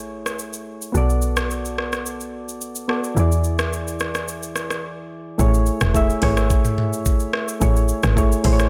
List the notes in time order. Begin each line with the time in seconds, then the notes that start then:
Already playing: A1 A3 E4 G#4 C#5
0.26 cross-stick, shaker
0.39 shaker
0.53 shaker
0.82 shaker
0.92 B1 B3 F#4 A4, shaker
0.97 D5
1.10 shaker
1.22 shaker
1.37 cross-stick, shaker
1.51 shaker
1.65 shaker
1.78 cross-stick
1.93 cross-stick, shaker
2.06 shaker
2.21 shaker
2.49 shaker
2.61 shaker
2.75 shaker
2.88 B3 F#4 A4 D5, cross-stick
3.04 shaker
3.15 E2 E3 E4 G#4, shaker
3.20 D5
3.32 shaker
3.44 shaker
3.59 cross-stick, shaker
3.73 shaker
3.88 shaker
4.00 cross-stick, shaker
4.15 cross-stick, shaker
4.28 shaker
4.43 shaker
4.56 cross-stick, shaker
4.70 cross-stick, shaker
5.38 A1 A3 E4 G#4 C#5, kick, shaker
5.54 shaker
5.66 shaker
5.81 E1, cross-stick, shaker
5.94 A3 E4 G#4 E5, kick, shaker
6.10 shaker
6.22 G#1 A3 E4 G#4 C#5, kick, cross-stick, open hi-hat
6.37 cross-stick, shaker
6.50 kick, shaker
6.65 mid tom, shaker
6.78 mid tom
6.93 shaker
7.06 kick, shaker
7.20 shaker
7.33 cross-stick
7.48 shaker
7.60 A1 A3 E4 G#4 C#5, kick, shaker
7.76 shaker
7.88 shaker
8.03 G#1, cross-stick, shaker
8.16 A3 E4 G#4 C#5, kick, shaker
8.32 shaker
8.44 A1 A3 E4 G#4 C5, kick, open hi-hat
8.53 C#5
8.59 cross-stick, shaker